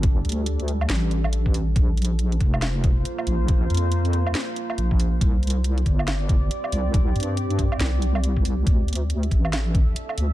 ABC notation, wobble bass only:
X:1
M:4/4
L:1/8
Q:"Swing 16ths" 1/4=139
K:Bblyd
V:1 name="Wobble bass" clef=bass
G,,, D,,3 A,,,4 | B,,,3 F,,,3 z B,,,- | B,,, F,,3 z2 B,,,2 | C,,3 G,,,3 z C,,- |
C,, G,,3 C,,3 C,, | D,,3 A,,,3 z D,, |]